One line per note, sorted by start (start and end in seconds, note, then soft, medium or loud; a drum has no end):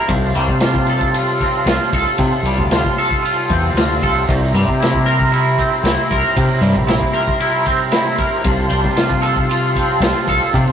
0.00 0.35 G3 medium
0.00 1.42 C4 medium
0.00 8.41 C6 medium
0.08 0.32 C2 loud
0.08 2.20 C3 medium
0.08 8.41 G4 medium
0.08 4.23 F5 medium
0.08 4.24 A5 medium
0.08 kick loud
0.08 ride medium
0.35 0.47 C2 medium
0.35 1.70 G3 medium
0.35 ride medium
0.48 1.42 C3 medium
0.48 kick medium
0.60 1.14 F4 medium
0.60 snare loud
0.60 ride medium
0.75 kick medium
0.87 1.93 A4 medium
0.87 ride medium
1.01 kick medium
1.14 1.66 F4 medium
1.14 ride medium
1.41 3.50 C4 medium
1.41 kick medium
1.41 ride medium
1.66 1.78 C2 medium
1.66 2.71 F4 medium
1.66 snare loud
1.66 ride medium
1.93 2.04 C2 medium
1.93 2.97 A4 medium
1.93 kick medium
1.93 ride medium
2.18 2.30 C3 loud
2.18 4.27 C3 medium
2.18 kick loud
2.18 ride medium
2.43 2.55 C2 medium
2.43 3.80 G3 medium
2.43 ride medium
2.58 2.81 D2 medium
2.58 kick medium
2.71 3.21 F4 medium
2.71 snare loud
2.71 ride medium
2.85 kick medium
2.98 4.02 A4 medium
2.98 ride medium
3.11 kick medium
3.23 3.76 F4 medium
3.23 ride medium
3.50 3.73 E2 medium
3.50 5.09 C4 medium
3.50 kick medium
3.50 ride medium
3.74 3.98 D2 medium
3.74 4.29 F4 medium
3.74 snare loud
3.74 ride medium
4.02 4.25 C2 medium
4.02 4.28 A4 medium
4.02 kick medium
4.02 ride medium
4.28 4.52 C2 loud
4.28 6.14 C3 medium
4.28 8.42 E5 medium
4.28 8.42 A#5 medium
4.28 kick loud
4.28 ride medium
4.53 4.65 G2 medium
4.53 6.61 G3 medium
4.53 snare soft
4.53 ride medium
4.68 5.61 C3 medium
4.68 kick medium
4.80 5.31 E4 medium
4.80 snare loud
4.80 ride medium
4.94 kick medium
5.06 6.10 A#4 medium
5.06 ride medium
5.20 kick medium
5.32 5.83 E4 medium
5.32 ride medium
5.59 7.16 C4 medium
5.59 kick medium
5.59 ride medium
5.83 5.95 C2 medium
5.83 6.86 E4 medium
5.83 snare loud
5.83 ride medium
6.11 6.23 C2 medium
6.11 7.12 A#4 medium
6.11 kick medium
6.11 ride medium
6.37 8.22 C3 medium
6.37 6.49 C3 loud
6.37 kick loud
6.37 ride medium
6.61 6.73 G2 medium
6.61 8.69 G3 medium
6.61 snare soft
6.61 ride medium
6.75 6.99 A#1 medium
6.75 kick medium
6.87 7.39 E4 medium
6.87 snare loud
6.87 ride medium
7.01 kick medium
7.13 8.18 A#4 medium
7.13 ride medium
7.28 kick medium
7.40 7.90 E4 medium
7.40 ride medium
7.66 9.77 C4 medium
7.66 kick medium
7.66 ride medium
7.92 8.44 E4 medium
7.92 snare loud
7.92 ride medium
8.18 8.45 A#4 medium
8.18 kick medium
8.18 ride medium
8.44 8.68 C2 medium
8.44 10.53 C3 medium
8.44 10.72 G4 medium
8.44 10.72 F5 medium
8.44 10.72 A5 medium
8.44 10.72 C6 medium
8.44 kick loud
8.44 ride medium
8.69 8.83 C2 medium
8.69 10.04 G3 medium
8.69 ride medium
8.84 9.78 C3 medium
8.84 kick medium
8.84 snare soft
8.96 9.48 F4 medium
8.96 snare loud
8.96 ride medium
9.10 kick medium
9.22 10.28 A4 medium
9.22 ride medium
9.37 kick medium
9.49 10.00 F4 medium
9.49 ride medium
9.76 10.72 C4 medium
9.76 kick medium
9.76 ride medium
10.00 10.12 C2 medium
10.00 10.72 F4 medium
10.00 snare loud
10.00 ride medium
10.27 10.39 C2 medium
10.27 10.72 A4 medium
10.27 kick medium
10.27 ride medium
10.53 10.72 C3 medium
10.53 10.65 C3 loud
10.53 kick loud
10.53 ride medium